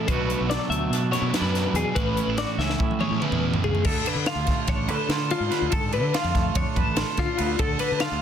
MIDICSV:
0, 0, Header, 1, 6, 480
1, 0, Start_track
1, 0, Tempo, 416956
1, 101, Time_signature, 9, 3, 24, 8
1, 9459, End_track
2, 0, Start_track
2, 0, Title_t, "Clean electric guitar"
2, 0, Program_c, 0, 27
2, 89, Note_on_c, 0, 71, 91
2, 572, Note_on_c, 0, 74, 82
2, 577, Note_off_c, 0, 71, 0
2, 800, Note_off_c, 0, 74, 0
2, 805, Note_on_c, 0, 76, 77
2, 1285, Note_off_c, 0, 76, 0
2, 1289, Note_on_c, 0, 73, 69
2, 1544, Note_off_c, 0, 73, 0
2, 1544, Note_on_c, 0, 71, 84
2, 2027, Note_off_c, 0, 71, 0
2, 2027, Note_on_c, 0, 68, 59
2, 2249, Note_on_c, 0, 71, 92
2, 2268, Note_off_c, 0, 68, 0
2, 2737, Note_off_c, 0, 71, 0
2, 2742, Note_on_c, 0, 74, 82
2, 2974, Note_off_c, 0, 74, 0
2, 2978, Note_on_c, 0, 76, 77
2, 3457, Note_off_c, 0, 76, 0
2, 3461, Note_on_c, 0, 73, 67
2, 3702, Note_off_c, 0, 73, 0
2, 3702, Note_on_c, 0, 71, 83
2, 4187, Note_off_c, 0, 71, 0
2, 4192, Note_on_c, 0, 68, 72
2, 4432, Note_off_c, 0, 68, 0
2, 4432, Note_on_c, 0, 69, 88
2, 4689, Note_off_c, 0, 69, 0
2, 4689, Note_on_c, 0, 71, 74
2, 4919, Note_on_c, 0, 77, 77
2, 4920, Note_off_c, 0, 71, 0
2, 5395, Note_off_c, 0, 77, 0
2, 5401, Note_on_c, 0, 73, 72
2, 5645, Note_off_c, 0, 73, 0
2, 5645, Note_on_c, 0, 69, 80
2, 6116, Note_on_c, 0, 65, 79
2, 6117, Note_off_c, 0, 69, 0
2, 6592, Note_off_c, 0, 65, 0
2, 6596, Note_on_c, 0, 69, 98
2, 6828, Note_off_c, 0, 69, 0
2, 6833, Note_on_c, 0, 71, 76
2, 7070, Note_off_c, 0, 71, 0
2, 7074, Note_on_c, 0, 77, 86
2, 7549, Note_off_c, 0, 77, 0
2, 7560, Note_on_c, 0, 73, 78
2, 7801, Note_off_c, 0, 73, 0
2, 7801, Note_on_c, 0, 69, 77
2, 8272, Note_off_c, 0, 69, 0
2, 8282, Note_on_c, 0, 65, 75
2, 8743, Note_on_c, 0, 69, 99
2, 8752, Note_off_c, 0, 65, 0
2, 8974, Note_off_c, 0, 69, 0
2, 8979, Note_on_c, 0, 71, 79
2, 9220, Note_off_c, 0, 71, 0
2, 9220, Note_on_c, 0, 77, 86
2, 9459, Note_off_c, 0, 77, 0
2, 9459, End_track
3, 0, Start_track
3, 0, Title_t, "Clean electric guitar"
3, 0, Program_c, 1, 27
3, 111, Note_on_c, 1, 47, 66
3, 119, Note_on_c, 1, 54, 55
3, 124, Note_on_c, 1, 57, 61
3, 132, Note_on_c, 1, 62, 56
3, 139, Note_on_c, 1, 66, 69
3, 336, Note_off_c, 1, 62, 0
3, 349, Note_on_c, 1, 62, 49
3, 573, Note_off_c, 1, 54, 0
3, 587, Note_on_c, 1, 54, 70
3, 590, Note_off_c, 1, 66, 0
3, 595, Note_on_c, 1, 69, 61
3, 817, Note_off_c, 1, 57, 0
3, 822, Note_on_c, 1, 57, 54
3, 1063, Note_off_c, 1, 62, 0
3, 1077, Note_on_c, 1, 62, 65
3, 1309, Note_on_c, 1, 42, 58
3, 1313, Note_off_c, 1, 69, 0
3, 1318, Note_on_c, 1, 64, 58
3, 1548, Note_off_c, 1, 62, 0
3, 1562, Note_on_c, 1, 62, 59
3, 2011, Note_off_c, 1, 47, 0
3, 2025, Note_on_c, 1, 47, 70
3, 2029, Note_off_c, 1, 42, 0
3, 2238, Note_off_c, 1, 47, 0
3, 2241, Note_off_c, 1, 54, 0
3, 2247, Note_off_c, 1, 62, 0
3, 2256, Note_on_c, 1, 45, 73
3, 2502, Note_on_c, 1, 61, 52
3, 2630, Note_off_c, 1, 64, 0
3, 2644, Note_off_c, 1, 61, 0
3, 2644, Note_on_c, 1, 64, 43
3, 2767, Note_on_c, 1, 66, 63
3, 2989, Note_off_c, 1, 57, 0
3, 3005, Note_on_c, 1, 61, 57
3, 3202, Note_off_c, 1, 64, 0
3, 3216, Note_on_c, 1, 64, 57
3, 3461, Note_on_c, 1, 40, 65
3, 3464, Note_off_c, 1, 45, 0
3, 3465, Note_off_c, 1, 66, 0
3, 3469, Note_on_c, 1, 68, 65
3, 3705, Note_on_c, 1, 45, 57
3, 3946, Note_off_c, 1, 45, 0
3, 3950, Note_on_c, 1, 47, 48
3, 4186, Note_off_c, 1, 47, 0
3, 4191, Note_on_c, 1, 49, 55
3, 4396, Note_off_c, 1, 64, 0
3, 4402, Note_off_c, 1, 68, 0
3, 4410, Note_off_c, 1, 61, 0
3, 4426, Note_off_c, 1, 40, 0
3, 4431, Note_off_c, 1, 49, 0
3, 4437, Note_on_c, 1, 50, 73
3, 4444, Note_on_c, 1, 69, 70
3, 4680, Note_on_c, 1, 62, 60
3, 4939, Note_on_c, 1, 65, 67
3, 5158, Note_on_c, 1, 57, 59
3, 5398, Note_off_c, 1, 62, 0
3, 5403, Note_on_c, 1, 62, 68
3, 5627, Note_off_c, 1, 69, 0
3, 5632, Note_on_c, 1, 71, 66
3, 5880, Note_off_c, 1, 65, 0
3, 5884, Note_on_c, 1, 65, 64
3, 6107, Note_off_c, 1, 62, 0
3, 6112, Note_on_c, 1, 62, 51
3, 6325, Note_off_c, 1, 71, 0
3, 6330, Note_off_c, 1, 50, 0
3, 6335, Note_on_c, 1, 50, 75
3, 6340, Note_on_c, 1, 71, 57
3, 6555, Note_off_c, 1, 71, 0
3, 6558, Note_off_c, 1, 50, 0
3, 6562, Note_on_c, 1, 50, 67
3, 6569, Note_on_c, 1, 69, 62
3, 6815, Note_off_c, 1, 62, 0
3, 6819, Note_on_c, 1, 62, 59
3, 7062, Note_off_c, 1, 65, 0
3, 7066, Note_on_c, 1, 65, 64
3, 7297, Note_off_c, 1, 57, 0
3, 7302, Note_on_c, 1, 57, 69
3, 7550, Note_off_c, 1, 62, 0
3, 7555, Note_on_c, 1, 62, 61
3, 7779, Note_off_c, 1, 69, 0
3, 7784, Note_on_c, 1, 71, 64
3, 8014, Note_off_c, 1, 65, 0
3, 8018, Note_on_c, 1, 65, 58
3, 8264, Note_off_c, 1, 62, 0
3, 8268, Note_on_c, 1, 62, 53
3, 8481, Note_off_c, 1, 71, 0
3, 8485, Note_off_c, 1, 50, 0
3, 8489, Note_on_c, 1, 50, 74
3, 8494, Note_on_c, 1, 71, 58
3, 8710, Note_off_c, 1, 71, 0
3, 8733, Note_off_c, 1, 50, 0
3, 8738, Note_on_c, 1, 50, 79
3, 8741, Note_on_c, 1, 69, 73
3, 8979, Note_off_c, 1, 62, 0
3, 8984, Note_on_c, 1, 62, 68
3, 9223, Note_off_c, 1, 65, 0
3, 9227, Note_on_c, 1, 65, 64
3, 9459, Note_off_c, 1, 50, 0
3, 9459, Note_off_c, 1, 57, 0
3, 9459, Note_off_c, 1, 62, 0
3, 9459, Note_off_c, 1, 65, 0
3, 9459, Note_off_c, 1, 69, 0
3, 9459, End_track
4, 0, Start_track
4, 0, Title_t, "Overdriven electric guitar"
4, 0, Program_c, 2, 29
4, 71, Note_on_c, 2, 47, 83
4, 85, Note_on_c, 2, 54, 82
4, 89, Note_on_c, 2, 59, 77
4, 99, Note_on_c, 2, 62, 83
4, 111, Note_on_c, 2, 66, 90
4, 1269, Note_off_c, 2, 66, 0
4, 1276, Note_off_c, 2, 47, 0
4, 1283, Note_off_c, 2, 54, 0
4, 1283, Note_on_c, 2, 66, 78
4, 1285, Note_off_c, 2, 59, 0
4, 1286, Note_off_c, 2, 62, 0
4, 1300, Note_on_c, 2, 62, 75
4, 1305, Note_on_c, 2, 59, 71
4, 1312, Note_on_c, 2, 54, 65
4, 1325, Note_on_c, 2, 47, 64
4, 1510, Note_off_c, 2, 47, 0
4, 1520, Note_off_c, 2, 54, 0
4, 1520, Note_off_c, 2, 66, 0
4, 1524, Note_on_c, 2, 47, 82
4, 1529, Note_off_c, 2, 62, 0
4, 1531, Note_off_c, 2, 59, 0
4, 1533, Note_on_c, 2, 54, 86
4, 1545, Note_on_c, 2, 59, 84
4, 1554, Note_on_c, 2, 62, 91
4, 1557, Note_on_c, 2, 66, 84
4, 2221, Note_off_c, 2, 47, 0
4, 2225, Note_on_c, 2, 45, 75
4, 2238, Note_off_c, 2, 54, 0
4, 2243, Note_on_c, 2, 52, 82
4, 2245, Note_off_c, 2, 59, 0
4, 2250, Note_on_c, 2, 57, 86
4, 2251, Note_off_c, 2, 62, 0
4, 2255, Note_on_c, 2, 61, 85
4, 2259, Note_off_c, 2, 66, 0
4, 2265, Note_on_c, 2, 64, 82
4, 3428, Note_off_c, 2, 45, 0
4, 3440, Note_off_c, 2, 52, 0
4, 3441, Note_on_c, 2, 45, 76
4, 3442, Note_off_c, 2, 57, 0
4, 3450, Note_off_c, 2, 61, 0
4, 3453, Note_on_c, 2, 52, 73
4, 3455, Note_off_c, 2, 64, 0
4, 3456, Note_on_c, 2, 57, 77
4, 3468, Note_on_c, 2, 61, 83
4, 3473, Note_on_c, 2, 64, 82
4, 3665, Note_off_c, 2, 64, 0
4, 3669, Note_off_c, 2, 61, 0
4, 3677, Note_off_c, 2, 57, 0
4, 3678, Note_on_c, 2, 64, 90
4, 3682, Note_off_c, 2, 45, 0
4, 3682, Note_on_c, 2, 61, 83
4, 3688, Note_off_c, 2, 52, 0
4, 3691, Note_on_c, 2, 57, 91
4, 3701, Note_on_c, 2, 52, 73
4, 3709, Note_on_c, 2, 45, 67
4, 4401, Note_off_c, 2, 64, 0
4, 4403, Note_off_c, 2, 61, 0
4, 4407, Note_off_c, 2, 57, 0
4, 4412, Note_off_c, 2, 52, 0
4, 4416, Note_off_c, 2, 45, 0
4, 9459, End_track
5, 0, Start_track
5, 0, Title_t, "Fingered electric bass"
5, 0, Program_c, 3, 33
5, 96, Note_on_c, 3, 35, 98
5, 376, Note_off_c, 3, 35, 0
5, 467, Note_on_c, 3, 35, 78
5, 650, Note_off_c, 3, 35, 0
5, 800, Note_on_c, 3, 38, 86
5, 995, Note_off_c, 3, 38, 0
5, 1035, Note_on_c, 3, 47, 87
5, 1324, Note_off_c, 3, 47, 0
5, 1399, Note_on_c, 3, 47, 89
5, 1502, Note_off_c, 3, 47, 0
5, 1624, Note_on_c, 3, 42, 72
5, 1918, Note_off_c, 3, 42, 0
5, 1995, Note_on_c, 3, 40, 93
5, 2100, Note_off_c, 3, 40, 0
5, 2258, Note_on_c, 3, 33, 94
5, 2540, Note_off_c, 3, 33, 0
5, 2613, Note_on_c, 3, 33, 77
5, 2804, Note_off_c, 3, 33, 0
5, 2970, Note_on_c, 3, 37, 94
5, 3163, Note_off_c, 3, 37, 0
5, 3227, Note_on_c, 3, 45, 79
5, 3506, Note_off_c, 3, 45, 0
5, 3578, Note_on_c, 3, 45, 99
5, 3675, Note_off_c, 3, 45, 0
5, 3817, Note_on_c, 3, 40, 83
5, 4099, Note_off_c, 3, 40, 0
5, 4178, Note_on_c, 3, 37, 90
5, 4275, Note_off_c, 3, 37, 0
5, 4429, Note_on_c, 3, 38, 93
5, 4614, Note_off_c, 3, 38, 0
5, 4781, Note_on_c, 3, 50, 91
5, 4969, Note_off_c, 3, 50, 0
5, 5012, Note_on_c, 3, 38, 91
5, 5204, Note_off_c, 3, 38, 0
5, 5387, Note_on_c, 3, 33, 109
5, 5622, Note_off_c, 3, 33, 0
5, 5622, Note_on_c, 3, 38, 93
5, 5718, Note_off_c, 3, 38, 0
5, 5855, Note_on_c, 3, 50, 106
5, 6138, Note_off_c, 3, 50, 0
5, 6218, Note_on_c, 3, 44, 89
5, 6315, Note_off_c, 3, 44, 0
5, 6468, Note_on_c, 3, 38, 95
5, 6561, Note_off_c, 3, 38, 0
5, 6589, Note_on_c, 3, 44, 93
5, 6941, Note_off_c, 3, 44, 0
5, 6941, Note_on_c, 3, 50, 85
5, 7036, Note_off_c, 3, 50, 0
5, 7185, Note_on_c, 3, 41, 78
5, 7462, Note_off_c, 3, 41, 0
5, 7543, Note_on_c, 3, 41, 93
5, 7637, Note_off_c, 3, 41, 0
5, 7781, Note_on_c, 3, 41, 88
5, 7875, Note_off_c, 3, 41, 0
5, 7905, Note_on_c, 3, 33, 86
5, 8089, Note_off_c, 3, 33, 0
5, 8267, Note_on_c, 3, 50, 92
5, 8358, Note_off_c, 3, 50, 0
5, 8519, Note_on_c, 3, 38, 114
5, 8697, Note_off_c, 3, 38, 0
5, 8742, Note_on_c, 3, 38, 103
5, 8927, Note_off_c, 3, 38, 0
5, 9113, Note_on_c, 3, 50, 92
5, 9293, Note_off_c, 3, 50, 0
5, 9342, Note_on_c, 3, 38, 85
5, 9459, Note_off_c, 3, 38, 0
5, 9459, End_track
6, 0, Start_track
6, 0, Title_t, "Drums"
6, 92, Note_on_c, 9, 42, 88
6, 95, Note_on_c, 9, 36, 104
6, 207, Note_off_c, 9, 42, 0
6, 210, Note_off_c, 9, 36, 0
6, 344, Note_on_c, 9, 42, 60
6, 459, Note_off_c, 9, 42, 0
6, 585, Note_on_c, 9, 42, 91
6, 589, Note_on_c, 9, 38, 111
6, 700, Note_off_c, 9, 42, 0
6, 704, Note_off_c, 9, 38, 0
6, 828, Note_on_c, 9, 42, 55
6, 943, Note_off_c, 9, 42, 0
6, 1070, Note_on_c, 9, 42, 86
6, 1074, Note_on_c, 9, 38, 31
6, 1185, Note_off_c, 9, 42, 0
6, 1189, Note_off_c, 9, 38, 0
6, 1303, Note_on_c, 9, 42, 54
6, 1307, Note_on_c, 9, 38, 33
6, 1418, Note_off_c, 9, 42, 0
6, 1422, Note_off_c, 9, 38, 0
6, 1541, Note_on_c, 9, 42, 89
6, 1545, Note_on_c, 9, 38, 104
6, 1656, Note_off_c, 9, 42, 0
6, 1660, Note_off_c, 9, 38, 0
6, 1787, Note_on_c, 9, 42, 58
6, 1791, Note_on_c, 9, 38, 31
6, 1902, Note_off_c, 9, 42, 0
6, 1907, Note_off_c, 9, 38, 0
6, 2015, Note_on_c, 9, 42, 57
6, 2130, Note_off_c, 9, 42, 0
6, 2256, Note_on_c, 9, 42, 77
6, 2259, Note_on_c, 9, 36, 105
6, 2372, Note_off_c, 9, 42, 0
6, 2374, Note_off_c, 9, 36, 0
6, 2499, Note_on_c, 9, 42, 62
6, 2614, Note_off_c, 9, 42, 0
6, 2735, Note_on_c, 9, 42, 79
6, 2740, Note_on_c, 9, 38, 113
6, 2850, Note_off_c, 9, 42, 0
6, 2855, Note_off_c, 9, 38, 0
6, 2986, Note_on_c, 9, 38, 53
6, 3102, Note_off_c, 9, 38, 0
6, 3102, Note_on_c, 9, 38, 55
6, 3217, Note_off_c, 9, 38, 0
6, 3223, Note_on_c, 9, 36, 97
6, 3338, Note_off_c, 9, 36, 0
6, 3348, Note_on_c, 9, 48, 57
6, 3460, Note_off_c, 9, 48, 0
6, 3460, Note_on_c, 9, 48, 71
6, 3576, Note_off_c, 9, 48, 0
6, 3705, Note_on_c, 9, 47, 81
6, 3820, Note_off_c, 9, 47, 0
6, 3824, Note_on_c, 9, 45, 70
6, 3939, Note_off_c, 9, 45, 0
6, 4070, Note_on_c, 9, 43, 79
6, 4186, Note_off_c, 9, 43, 0
6, 4191, Note_on_c, 9, 43, 86
6, 4306, Note_off_c, 9, 43, 0
6, 4313, Note_on_c, 9, 43, 70
6, 4427, Note_on_c, 9, 49, 120
6, 4428, Note_off_c, 9, 43, 0
6, 4433, Note_on_c, 9, 36, 120
6, 4542, Note_off_c, 9, 49, 0
6, 4548, Note_off_c, 9, 36, 0
6, 4674, Note_on_c, 9, 51, 88
6, 4789, Note_off_c, 9, 51, 0
6, 4904, Note_on_c, 9, 51, 105
6, 4909, Note_on_c, 9, 38, 115
6, 5019, Note_off_c, 9, 51, 0
6, 5024, Note_off_c, 9, 38, 0
6, 5142, Note_on_c, 9, 51, 74
6, 5147, Note_on_c, 9, 38, 36
6, 5151, Note_on_c, 9, 36, 68
6, 5257, Note_off_c, 9, 51, 0
6, 5262, Note_off_c, 9, 38, 0
6, 5266, Note_off_c, 9, 36, 0
6, 5381, Note_on_c, 9, 51, 114
6, 5386, Note_on_c, 9, 38, 35
6, 5390, Note_on_c, 9, 36, 106
6, 5497, Note_off_c, 9, 51, 0
6, 5501, Note_off_c, 9, 38, 0
6, 5505, Note_off_c, 9, 36, 0
6, 5624, Note_on_c, 9, 51, 73
6, 5739, Note_off_c, 9, 51, 0
6, 5865, Note_on_c, 9, 51, 89
6, 5870, Note_on_c, 9, 38, 121
6, 5980, Note_off_c, 9, 51, 0
6, 5985, Note_off_c, 9, 38, 0
6, 6107, Note_on_c, 9, 51, 64
6, 6222, Note_off_c, 9, 51, 0
6, 6349, Note_on_c, 9, 51, 75
6, 6354, Note_on_c, 9, 38, 36
6, 6464, Note_off_c, 9, 51, 0
6, 6469, Note_off_c, 9, 38, 0
6, 6581, Note_on_c, 9, 51, 89
6, 6590, Note_on_c, 9, 36, 110
6, 6696, Note_off_c, 9, 51, 0
6, 6705, Note_off_c, 9, 36, 0
6, 6820, Note_on_c, 9, 51, 73
6, 6935, Note_off_c, 9, 51, 0
6, 7071, Note_on_c, 9, 51, 107
6, 7076, Note_on_c, 9, 38, 127
6, 7186, Note_off_c, 9, 51, 0
6, 7191, Note_off_c, 9, 38, 0
6, 7309, Note_on_c, 9, 36, 65
6, 7310, Note_on_c, 9, 51, 67
6, 7314, Note_on_c, 9, 38, 31
6, 7424, Note_off_c, 9, 36, 0
6, 7425, Note_off_c, 9, 51, 0
6, 7430, Note_off_c, 9, 38, 0
6, 7542, Note_on_c, 9, 51, 94
6, 7547, Note_on_c, 9, 36, 117
6, 7657, Note_off_c, 9, 51, 0
6, 7662, Note_off_c, 9, 36, 0
6, 7786, Note_on_c, 9, 36, 75
6, 7786, Note_on_c, 9, 51, 73
6, 7901, Note_off_c, 9, 51, 0
6, 7902, Note_off_c, 9, 36, 0
6, 8018, Note_on_c, 9, 51, 112
6, 8022, Note_on_c, 9, 38, 114
6, 8133, Note_off_c, 9, 51, 0
6, 8137, Note_off_c, 9, 38, 0
6, 8257, Note_on_c, 9, 51, 78
6, 8262, Note_on_c, 9, 38, 36
6, 8263, Note_on_c, 9, 36, 59
6, 8372, Note_off_c, 9, 51, 0
6, 8377, Note_off_c, 9, 38, 0
6, 8379, Note_off_c, 9, 36, 0
6, 8500, Note_on_c, 9, 51, 81
6, 8616, Note_off_c, 9, 51, 0
6, 8736, Note_on_c, 9, 51, 99
6, 8740, Note_on_c, 9, 36, 100
6, 8851, Note_off_c, 9, 51, 0
6, 8856, Note_off_c, 9, 36, 0
6, 8969, Note_on_c, 9, 51, 81
6, 9084, Note_off_c, 9, 51, 0
6, 9208, Note_on_c, 9, 51, 110
6, 9212, Note_on_c, 9, 38, 126
6, 9323, Note_off_c, 9, 51, 0
6, 9328, Note_off_c, 9, 38, 0
6, 9459, End_track
0, 0, End_of_file